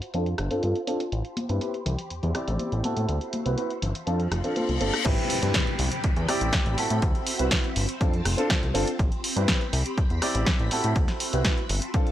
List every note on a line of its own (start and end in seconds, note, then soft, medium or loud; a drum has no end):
0.00 1.11 F4 medium
0.00 1.08 C5 medium
0.00 1.11 A5 medium
0.00 closed hi-hat medium
0.14 0.35 F2 medium
0.14 0.25 C4 medium
0.14 0.26 D4 medium
0.14 0.26 F4 medium
0.14 0.26 A4 medium
0.14 closed hi-hat soft
0.26 closed hi-hat soft
0.38 0.49 G1 loud
0.38 cross-stick medium
0.38 closed hi-hat medium
0.50 0.61 G2 soft
0.50 0.61 C4 medium
0.50 0.61 D4 medium
0.50 0.61 F4 medium
0.50 0.61 A4 loud
0.50 closed hi-hat medium
0.63 0.74 G2 medium
0.63 0.74 C4 medium
0.63 0.74 D4 medium
0.63 0.75 F4 medium
0.63 0.75 A4 medium
0.63 closed hi-hat soft
0.75 closed hi-hat soft
0.87 0.99 C4 medium
0.87 0.99 D4 medium
0.87 0.99 F4 medium
0.87 0.99 A4 loud
0.87 closed hi-hat medium
1.00 closed hi-hat soft
1.12 1.23 A1 medium
1.12 3.07 G4 medium
1.12 5.02 C5 medium
1.12 3.80 B5 medium
1.12 closed hi-hat soft
1.25 closed hi-hat soft
1.37 closed hi-hat medium
1.37 high conga loud
1.37 shaker medium
1.49 1.60 G2 medium
1.49 1.58 C4 medium
1.49 1.58 E4 medium
1.49 1.58 G4 medium
1.49 1.59 B4 medium
1.49 closed hi-hat soft
1.49 shaker soft
1.61 1.73 C4 medium
1.61 1.73 E4 medium
1.61 1.73 G4 medium
1.61 1.73 B4 medium
1.61 closed hi-hat soft
1.73 closed hi-hat soft
1.73 shaker soft
1.85 1.97 C2 loud
1.85 closed hi-hat medium
1.85 low conga medium
1.85 shaker medium
1.99 closed hi-hat soft
1.99 shaker soft
2.10 2.21 E2 soft
2.10 closed hi-hat soft
2.10 shaker soft
2.23 2.33 E2 medium
2.23 closed hi-hat soft
2.23 low conga medium
2.23 shaker soft
2.35 2.81 C4 medium
2.35 2.81 E4 medium
2.35 2.82 G4 medium
2.35 2.82 D5 medium
2.35 cross-stick medium
2.35 closed hi-hat medium
2.48 2.58 A1 medium
2.48 closed hi-hat soft
2.48 low conga medium
2.48 shaker soft
2.59 closed hi-hat soft
2.59 high conga medium
2.59 shaker soft
2.72 2.82 A1 medium
2.72 closed hi-hat soft
2.83 2.95 A2 soft
2.83 3.43 C4 medium
2.83 3.43 E4 medium
2.83 3.43 F#4 medium
2.83 3.43 A4 medium
2.83 closed hi-hat medium
2.83 high conga medium
2.83 shaker medium
2.97 3.07 A2 medium
2.97 closed hi-hat soft
2.97 shaker soft
3.08 3.19 D2 loud
3.08 closed hi-hat soft
3.08 shaker soft
3.21 closed hi-hat soft
3.33 closed hi-hat medium
3.33 high conga medium
3.33 shaker medium
3.46 3.56 C2 medium
3.46 3.56 C4 medium
3.46 3.56 E4 medium
3.46 3.56 F#4 medium
3.46 3.56 B4 medium
3.46 closed hi-hat soft
3.46 shaker soft
3.57 3.69 C4 medium
3.57 3.69 E4 medium
3.57 3.70 F#4 medium
3.57 3.70 B4 medium
3.57 closed hi-hat soft
3.57 shaker soft
3.70 closed hi-hat soft
3.70 shaker soft
3.82 3.93 G1 loud
3.82 5.04 F4 medium
3.82 5.04 A5 medium
3.82 closed hi-hat medium
3.82 low conga medium
3.82 shaker medium
3.95 closed hi-hat soft
3.95 shaker soft
4.06 4.28 F2 medium
4.06 4.18 C4 medium
4.06 4.19 D4 medium
4.06 4.19 F4 medium
4.06 4.19 A4 medium
4.06 closed hi-hat soft
4.06 reverse cymbal medium
4.06 shaker soft
4.20 closed hi-hat soft
4.32 4.42 F1 loud
4.32 cross-stick medium
4.32 closed hi-hat medium
4.32 low conga medium
4.32 shaker medium
4.44 4.54 C4 medium
4.44 4.55 D4 medium
4.44 4.55 F4 medium
4.44 4.55 A4 medium
4.44 closed hi-hat soft
4.44 shaker soft
4.56 4.68 C4 medium
4.56 4.68 D4 medium
4.56 4.68 F4 medium
4.56 4.68 A4 medium
4.56 closed hi-hat soft
4.56 high conga medium
4.56 shaker soft
4.69 4.79 C2 medium
4.69 closed hi-hat soft
4.69 high conga medium
4.69 shaker soft
4.80 4.92 G1 medium
4.80 4.92 C4 loud
4.80 4.92 D4 medium
4.80 4.93 F4 medium
4.80 4.93 A4 loud
4.80 closed hi-hat medium
4.80 high conga medium
4.80 shaker medium
4.94 cross-stick medium
4.94 closed hi-hat soft
4.94 shaker soft
5.05 5.16 A1 loud
5.05 5.37 C4 loud
5.05 12.12 C4 medium
5.05 5.37 E4 loud
5.05 5.38 G4 loud
5.05 7.00 G4 medium
5.05 5.38 B4 loud
5.05 7.73 B5 medium
5.05 kick loud
5.05 closed hi-hat medium
5.05 crash loud
5.05 downlifter medium
5.18 closed hi-hat soft
5.30 open hi-hat loud
5.42 5.53 G2 medium
5.42 5.51 C4 medium
5.42 5.52 E4 medium
5.42 5.52 G4 medium
5.42 5.52 B4 medium
5.42 closed hi-hat medium
5.54 5.66 C4 medium
5.54 5.66 E4 medium
5.54 5.66 G4 medium
5.54 5.66 B4 loud
5.54 kick loud
5.54 snare loud
5.54 closed hi-hat medium
5.67 closed hi-hat soft
5.79 5.90 C2 loud
5.79 open hi-hat medium
5.92 closed hi-hat medium
6.04 6.14 E2 soft
6.04 kick loud
6.04 closed hi-hat medium
6.16 6.27 E2 loud
6.16 closed hi-hat soft
6.28 6.75 C4 medium
6.28 6.75 E4 medium
6.28 6.75 G4 medium
6.28 6.75 D5 loud
6.28 cross-stick medium
6.28 open hi-hat loud
6.41 6.51 A1 medium
6.41 closed hi-hat medium
6.53 kick loud
6.53 snare loud
6.53 closed hi-hat medium
6.66 6.76 A1 loud
6.66 closed hi-hat soft
6.77 6.88 A2 soft
6.77 7.36 C4 medium
6.77 7.36 E4 medium
6.77 7.37 F#4 medium
6.77 7.37 A4 medium
6.77 open hi-hat medium
6.90 7.01 A2 medium
6.90 closed hi-hat medium
7.02 7.13 D2 loud
7.02 kick loud
7.02 closed hi-hat medium
7.15 closed hi-hat soft
7.27 open hi-hat loud
7.39 7.50 C2 medium
7.39 7.49 C4 medium
7.39 7.50 E4 medium
7.39 7.50 F#4 medium
7.39 7.50 B4 medium
7.39 closed hi-hat medium
7.51 7.63 C4 medium
7.51 7.63 E4 medium
7.51 kick loud
7.51 snare loud
7.51 closed hi-hat medium
7.64 closed hi-hat soft
7.76 7.87 G1 loud
7.76 8.98 F4 medium
7.76 8.98 A5 medium
7.76 open hi-hat medium
7.89 closed hi-hat medium
8.00 8.22 F2 medium
8.00 8.12 C4 medium
8.00 8.12 D4 medium
8.00 8.12 F4 medium
8.00 8.13 A4 medium
8.00 kick loud
8.00 closed hi-hat medium
8.14 closed hi-hat soft
8.25 8.36 F1 loud
8.25 cross-stick medium
8.25 open hi-hat loud
8.37 8.48 C4 medium
8.37 8.48 D4 medium
8.37 8.48 F4 medium
8.37 8.48 A4 loud
8.37 closed hi-hat medium
8.50 8.61 F4 medium
8.50 kick loud
8.50 snare loud
8.50 closed hi-hat medium
8.63 8.73 C2 medium
8.63 closed hi-hat soft
8.74 8.85 G1 loud
8.74 8.86 C4 loud
8.74 8.86 D4 medium
8.74 8.86 F4 loud
8.74 8.86 A4 loud
8.74 open hi-hat loud
8.87 closed hi-hat medium
8.99 9.10 A1 loud
8.99 10.94 G4 medium
8.99 11.67 B5 loud
8.99 kick loud
8.99 closed hi-hat medium
9.12 closed hi-hat soft
9.24 open hi-hat loud
9.36 9.46 G2 medium
9.36 9.45 C4 medium
9.36 9.45 E4 medium
9.36 9.46 G4 medium
9.36 9.46 B4 medium
9.36 closed hi-hat medium
9.48 9.60 C4 medium
9.48 9.60 E4 medium
9.48 9.60 G4 medium
9.48 9.60 B4 loud
9.48 kick loud
9.48 snare loud
9.48 closed hi-hat medium
9.61 closed hi-hat soft
9.73 9.83 C2 loud
9.73 open hi-hat loud
9.86 closed hi-hat medium
9.98 10.08 E2 soft
9.98 kick loud
9.98 closed hi-hat medium
10.10 10.20 E2 loud
10.10 closed hi-hat soft
10.22 10.68 C4 loud
10.22 10.68 E4 medium
10.22 10.69 G4 medium
10.22 10.69 D5 loud
10.22 cross-stick medium
10.22 open hi-hat loud
10.35 10.45 A1 medium
10.35 closed hi-hat medium
10.46 kick loud
10.46 snare loud
10.46 closed hi-hat soft
10.59 10.70 A1 loud
10.59 closed hi-hat soft
10.71 10.82 A2 soft
10.71 11.30 C4 medium
10.71 11.30 E4 medium
10.71 11.30 F#4 medium
10.71 11.31 A4 medium
10.71 open hi-hat loud
10.84 10.94 A2 medium
10.84 closed hi-hat medium
10.96 11.06 D2 loud
10.96 kick loud
10.96 closed hi-hat soft
11.08 snare soft
11.08 closed hi-hat soft
11.20 open hi-hat loud
11.33 11.43 C2 medium
11.33 11.43 C4 medium
11.33 11.43 E4 medium
11.33 11.43 F#4 medium
11.33 11.44 B4 medium
11.33 closed hi-hat medium
11.45 11.57 C4 medium
11.45 11.57 E4 medium
11.45 11.57 F#4 medium
11.45 kick loud
11.45 snare loud
11.45 closed hi-hat soft
11.58 closed hi-hat soft
11.69 11.80 G1 loud
11.69 12.12 F4 medium
11.69 12.12 A5 medium
11.69 open hi-hat medium
11.82 closed hi-hat medium
11.94 12.06 C4 medium
11.94 12.06 D4 medium
11.94 12.06 F4 medium
11.94 12.06 A4 medium
11.94 kick loud
11.94 closed hi-hat medium
12.07 closed hi-hat soft